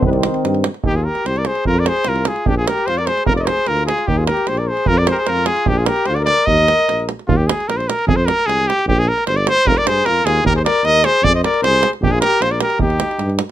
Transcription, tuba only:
0.04 0.26 C2 loud
0.45 0.67 G2 medium
0.85 1.07 D#2 medium
1.25 1.47 C2 medium
1.66 1.88 F2 loud
2.07 2.29 C2 medium
2.47 2.69 A#1 medium
2.87 3.09 F2 medium
3.28 3.50 F1 medium
3.68 3.90 D2 medium
4.08 4.30 D#2 medium
4.48 4.70 A#1 medium
4.88 5.10 F2 loud
5.28 5.50 F2 medium
5.68 5.90 A#1 medium
6.08 6.30 D2 medium
6.48 6.70 D#2 loud
6.88 7.10 A#1 medium
7.28 7.49 D#2 loud
7.68 7.89 A#1 medium
8.07 8.29 F2 loud
8.46 8.68 C2 medium
8.86 9.08 A#1 loud
9.27 9.48 G1 medium
9.65 9.76 F1 loud
9.86 10.03 G2 medium
10.05 10.23 F2 medium
10.25 10.42 D#2 medium
10.44 10.65 D#2 loud
10.83 11.05 D#2 medium
11.22 11.44 F2 medium
11.62 11.84 C2 medium
12.01 12.22 A#1 loud
12.40 12.62 A#1 medium
12.78 13.00 D#2 medium
13.19 13.40 G2 medium

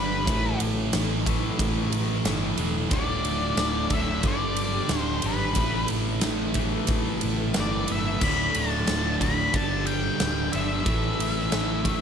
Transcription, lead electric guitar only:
0.00 0.58 B4 medium
2.93 3.93 D5 loud
3.94 4.23 E5 loud
4.27 4.98 D5 loud
4.98 5.28 C5 loud
5.26 5.87 B4 medium
7.60 7.92 D5 loud
7.92 8.24 E5 medium
8.23 8.56 B5 loud
8.56 9.17 A5 loud
9.22 9.55 B5 loud
9.55 9.86 A5 loud
9.87 10.55 G5 medium
10.52 12.01 E5 medium

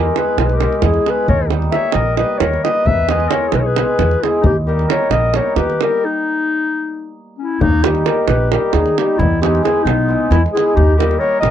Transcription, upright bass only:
0.00 0.10 E2 loud
0.37 0.65 B1 medium
0.83 0.97 E2 medium
1.28 1.68 D#2 medium
1.94 2.22 A#1 medium
2.40 2.55 D#2 medium
2.85 3.26 E2 medium
3.53 3.80 B1 medium
3.99 4.13 E2 medium
4.43 4.84 D#2 loud
5.10 5.38 A#1 medium
5.56 5.71 D#2 medium
7.61 8.01 D#2 medium
8.28 8.55 A#1 medium
8.73 8.88 D#2 medium
9.19 9.59 E2 loud
9.85 10.13 B1 medium
10.31 10.45 E2 medium
10.77 11.16 D#2 loud
11.42 11.51 A#1 medium

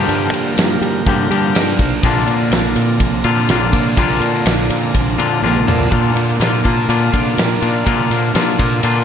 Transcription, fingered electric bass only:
0.09 0.31 G2 loud
0.33 0.56 G3 medium
0.57 0.80 G2 medium
0.81 1.04 G3 medium
1.06 1.29 G2 medium
1.31 1.54 G3 medium
1.54 1.77 G2 medium
1.79 2.02 B1 medium
2.03 2.26 A#1 loud
2.27 2.50 A#2 medium
2.51 2.74 A#1 medium
2.76 2.98 A#2 medium
3.00 3.23 A#1 medium
3.25 3.50 A#2 medium
3.48 3.71 A#1 medium
3.73 3.95 A#2 medium
3.97 4.20 A#1 medium
4.20 4.43 A#2 medium
4.45 4.68 A#1 medium
4.70 4.92 A#2 loud
4.95 5.17 A#1 medium
5.18 5.44 A#2 loud
5.42 5.65 A#1 medium
5.66 5.89 A#2 medium
5.92 6.14 A#2 medium
6.15 6.38 A#2 medium
6.40 6.62 A#2 loud
6.65 6.87 A#2 medium
6.89 7.11 A#2 medium
7.13 7.36 A#2 medium
7.38 7.60 A#2 medium
7.62 7.84 A#2 medium
7.87 8.09 A#2 loud
8.10 8.33 A#2 medium
8.35 8.57 A#2 loud
8.59 8.81 A#2 loud
8.84 9.04 A#2 medium

